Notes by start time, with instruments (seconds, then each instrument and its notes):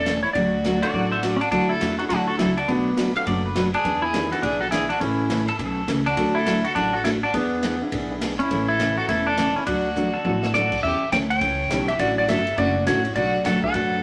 Already playing: upright bass E1, fiddle A4, electric slide guitar D5
0.06 steel-string acoustic guitar C#3 E3 A3 C#4 A4, snare, hi-hat pedal, ride
0.23 fiddle E4, electric slide guitar C#5
0.33 upright bass D2, steel-string acoustic guitar D3 F#3 A3 D4 F#4, fiddle F#4, electric slide guitar D5, kick, ride
0.64 steel-string acoustic guitar D3 F#3 A3 D4 F#4, snare, hi-hat pedal, ride
0.82 upright piano A3 D4 F#4 A4, pedal steel guitar F#4 D5, ride
0.94 upright bass A1, steel-string acoustic guitar D3 F#3 A3 D4 F#4, pedal steel guitar F#4 D5, kick
1.12 pedal steel guitar C5 E5
1.23 steel-string acoustic guitar D3 F#3 A3 D4 F#4, pedal steel guitar D5, snare, hi-hat pedal, ride
1.36 electric slide guitar C#4, fiddle E4 F#4
1.41 electric slide guitar D4, ride
1.51 upright bass D2, steel-string acoustic guitar D3 F#3 A3 E4 F#4, electric slide guitar D4, fiddle F#4, kick, ride
1.69 electric slide guitar E4, fiddle A4
1.80 upright bass E2, steel-string acoustic guitar D3 F#3 A3 E4 F#4, snare, hi-hat pedal, ride
1.98 upright piano F#3 A3 D4 E4 F#4, electric slide guitar F#4, fiddle A4, ride
2.09 upright bass D2, steel-string acoustic guitar D3 F#3 A3 E4 F#4, electric slide guitar D4, fiddle F#4, kick, ride
2.27 electric slide guitar F#4, fiddle A4
2.38 upright bass C#2, steel-string acoustic guitar D3 F#3 A3 E4 F#4, electric slide guitar E4, fiddle A4, snare, hi-hat pedal, ride
2.57 electric slide guitar D4, fiddle F#4, ride
2.68 upright bass B1, steel-string acoustic guitar B2 F#3 A3 D4 F#4, electric slide guitar B3, fiddle D4, kick, ride
2.96 steel-string acoustic guitar B2 F#3 A3 D4 F#4, snare, hi-hat pedal, ride
3.16 upright piano F#3 A3 B3 D4 F#4, pedal steel guitar F5, ride
3.26 upright bass F#1, steel-string acoustic guitar B2 F#3 A3 D4 F#4, pedal steel guitar D5, kick, ride
3.46 pedal steel guitar B4
3.55 steel-string acoustic guitar B2 F#3 A3 D4 F#4, snare, hi-hat pedal, ride
3.74 electric slide guitar D4, fiddle G#4, ride
3.84 upright bass E2, steel-string acoustic guitar E3 B3 D4 G#4, kick, ride
4.02 electric slide guitar E4, fiddle G#4
4.13 upright piano D#3 G3 A#3 C#4 D#4, steel-string acoustic guitar E3 B3 D4 G#4, snare, hi-hat pedal, ride
4.32 upright piano E3 G#3 B3 D4 E4, electric slide guitar F#4, fiddle A4, ride
4.42 upright bass B1, steel-string acoustic guitar E3 B3 D4 G#4, electric slide guitar D4, fiddle G#4, kick, ride
4.60 electric slide guitar F#4, fiddle A4
4.71 steel-string acoustic guitar E3 B3 D4 G#4, electric slide guitar E4, fiddle G#4, snare, hi-hat pedal, ride
4.89 electric slide guitar D4, fiddle F#4, ride
5.00 upright bass A1, steel-string acoustic guitar C#3 E3 A3 C#4 A4, upright piano E3 A3 C#4 E4 A4, electric slide guitar C#4, fiddle E4, kick, ride
5.30 steel-string acoustic guitar C#3 E3 A3 C#4 A4, snare, hi-hat pedal, ride
5.48 pedal steel guitar A4, ride
5.59 upright bass B1, steel-string acoustic guitar C#3 E3 A3 C#4 A4, pedal steel guitar A4, kick, ride
5.88 upright bass C#2, steel-string acoustic guitar C#3 E3 A3 C#4 A4, snare, hi-hat pedal, ride
6.06 electric slide guitar D4, fiddle F#4, ride
6.17 upright bass D2, steel-string acoustic guitar D3 F#3 A3 D4 F#4, upright piano F#3 A3 D4 F#4 A4, kick, ride
6.35 electric slide guitar E4, fiddle A4
6.46 steel-string acoustic guitar D3 F#3 A3 D4 F#4, snare, hi-hat pedal, ride
6.65 electric slide guitar F#4, fiddle A4, ride
6.75 upright bass A1, steel-string acoustic guitar D3 F#3 A3 D4 F#4, electric slide guitar D4, fiddle F#4, kick, ride
6.93 electric slide guitar F#4, fiddle A4
7.04 steel-string acoustic guitar D3 F#3 A3 D4 F#4, electric slide guitar E4, fiddle A4, snare, hi-hat pedal, ride
7.23 electric slide guitar D4, fiddle F#4
7.33 upright bass E2, steel-string acoustic guitar E3 B3 D4 G#4, upright piano G#3 B3 D4 E4 G#4, electric slide guitar B3, fiddle D4, kick, ride
7.63 steel-string acoustic guitar E3 B3 D4 G#4, snare, hi-hat pedal, ride
7.81 upright piano G#3 B3 D4 E4 G#4
7.92 upright bass B1, steel-string acoustic guitar E3 B3 D4 G#4, kick, ride
8.10 upright piano G#3 B3 D4 E4 G#4
8.21 steel-string acoustic guitar E3 B3 D4 G#4, snare, hi-hat pedal, ride
8.39 electric slide guitar C#4, fiddle E4, ride
8.50 upright bass A1, steel-string acoustic guitar C#3 E3 A3 C#4 A4, upright piano E3 A3 C#4 E4 A4, kick, ride
8.68 electric slide guitar E4, fiddle A4
8.79 steel-string acoustic guitar C#3 E3 A3 C#4 A4, snare, hi-hat pedal, ride
8.97 electric slide guitar F#4, fiddle A4
9.08 upright bass E1, steel-string acoustic guitar C#3 E3 A3 C#4 A4, electric slide guitar E4, fiddle A4, kick, ride
9.27 electric slide guitar D4, fiddle A4
9.37 steel-string acoustic guitar C#3 E3 A3 C#4 A4, snare, hi-hat pedal, ride
9.56 electric slide guitar C#4, fiddle E4
9.66 upright bass D2, steel-string acoustic guitar D3 F#3 A3 D4 F#4, electric slide guitar D4, fiddle F#4, kick, ride
9.96 steel-string acoustic guitar D3 F#3 A3 D4 F#4, hi-hat pedal, high tom
10.14 pedal steel guitar A4
10.25 upright bass A1, steel-string acoustic guitar D3 F#3 A3 D4 F#4, high tom
10.43 snare
10.54 steel-string acoustic guitar D3 F#3 A3 D4 F#4, upright piano F#3 A3 D4 F#4 A4, fiddle F#4, pedal steel guitar A4, electric slide guitar D5, snare, hi-hat pedal
10.72 kick, crash
10.83 upright bass E2, steel-string acoustic guitar E3 G3 C#4 E4 A4, fiddle G4, electric slide guitar E5, kick
11.02 muted upright bass stroke
11.12 upright bass D2, steel-string acoustic guitar E3 G3 C#4 E4 A4, fiddle C#5, electric slide guitar G5, snare, hi-hat pedal, ride
11.30 fiddle C#5, electric slide guitar G5, ride
11.41 upright bass C#2, steel-string acoustic guitar E3 G3 C#4 E4 A4, kick, ride
11.70 upright bass B1, steel-string acoustic guitar E3 G3 C#4 E4 A4, upright piano G3 A3 C#4 E4 G4, snare, hi-hat pedal, ride
11.88 fiddle G4, electric slide guitar E5, ride
11.98 upright bass A1, steel-string acoustic guitar D3 F#3 A3 C#4 F#4, fiddle F#4, electric slide guitar D5, kick, ride
12.18 fiddle F#4, electric slide guitar D5
12.28 upright bass G1, steel-string acoustic guitar D3 F#3 A3 C#4 F#4, fiddle A4, electric slide guitar E5, snare, hi-hat pedal, ride
12.47 ride
12.57 upright bass F#1, steel-string acoustic guitar D3 F#3 A3 C#4 F#4, fiddle F#4, electric slide guitar D5, kick, ride
12.86 upright bass A1, steel-string acoustic guitar D3 F#3 A3 C#4 F#4, upright piano F#3 A3 C#4 D4 F#4, fiddle F#4, electric slide guitar C#5, snare, hi-hat pedal, ride
13.05 ride
13.15 upright bass B1, steel-string acoustic guitar B2 F#3 A3 D4 F#4, fiddle F#4, electric slide guitar D5, kick, ride
13.44 upright bass D2, steel-string acoustic guitar B2 F#3 A3 D4 F#4, fiddle A4, electric slide guitar F#5, snare, hi-hat pedal, ride
13.62 upright piano F#3 A3 B3 D4 F#4, fiddle A4, electric slide guitar F#5, kick
13.73 upright bass F#2, steel-string acoustic guitar B2 F#3 A3 D4 F#4, kick, ride